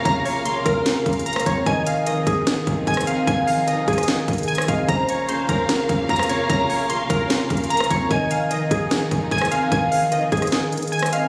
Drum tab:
HH |x-----------o-----------x-----------x-----------x-----------x---x---x---x---x---x---x-----------|x-----------x-----------x-----------x-----------x-----------x-----------x---x---x---x-----------|x-----------o-----------x-----------x--x--x--x--x-----------x--x--x--x--x---x---x---x-----------|x-----------x-----------x-----------x-----------x-----------x-----------x---x---x---x-----------|
SD |------------------------------------------------o-----------------------------r-----------------|------------------------------------------------o-----------------------------r-----------------|------------------------------------------r-----o-----------------------------r-----------------|------------------------------------------------o-----------------------------r-----------------|
BD |o-----------------------------------o-----------------------o-----------------------o-----------|o-----------------------------------o-----------------------o-----------o-----------------------|o-----------------------------------o-----------------------o-----------------------o-----------|o-----------------------------------o-----------------------o-----------o-----------------------|

HH |x-----------o-----------x-----------x-----------x-----------x---x---x---x---x---x---x-----------|x-----------x-----------x-----------x-----------x-----------x-----------x---x---x---x-----------|x-----------o-----------x-----------x--x--x--x--x-----------x--x--x--x--x---x---x---x-----------|
SD |------------------------------------------------o-----------------------------r-----------------|------------------------------------------------o-----------------------------r-----------------|------------------------------------------r-----o-----------------------------r-----------------|
BD |o-----------------------------------o-----------------------o-----------------------o-----------|o-----------------------------------o-----------------------o-----------o-----------------------|o-----------------------------------o-----------------------------------------------------------|